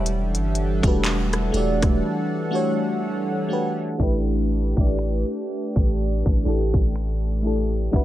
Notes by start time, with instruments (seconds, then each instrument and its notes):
Already playing: 808-style bass E1, analog synth pad G3, fm electric piano C#5 E5
0.06 analog synth pad E3 D4 A4 F#5, closed hi-hat
0.35 808-style bass G1, closed hi-hat
0.55 closed hi-hat
0.83 808-style bass E1, fm electric piano A3 D4 F#4 G4, kick, closed hi-hat
0.87 fm electric piano B4
1.04 clap, closed hi-hat
1.33 cross-stick, closed hi-hat
1.52 808-style bass E1, fm electric piano A3 D4 F#4 G4, closed hi-hat
1.57 fm electric piano D5
1.82 808-style bass E1, kick, cross-stick, closed hi-hat
2.51 fm electric piano A3 D4 F#4 G4
2.55 fm electric piano C#5
3.49 fm electric piano A3 D4 F#4 G4
3.53 fm electric piano B4
3.98 808-style bass A1, fm electric piano A3 D4 E4 G4, analog synth pad A3 D4 G4, kick, closed hi-hat
4.03 fm electric piano B4
4.49 closed hi-hat
4.76 808-style bass A1, fm electric piano A3 D4 E4 G4, kick
4.80 fm electric piano D5
4.99 finger snap
5.47 closed hi-hat
5.76 808-style bass A1, kick
5.97 closed hi-hat
6.26 808-style bass A1, kick
6.44 808-style bass A1, fm electric piano A3 D4 E4 G4
6.48 fm electric piano A4
6.74 808-style bass A1, kick
6.95 finger snap, closed hi-hat
7.42 fm electric piano A3 D4 E4 G4, closed hi-hat
7.47 fm electric piano A4
7.91 808-style bass G1, fm electric piano G3 D4 E4 F#4, analog synth pad G3 D4 F#4 B4, kick, closed hi-hat
7.96 fm electric piano B4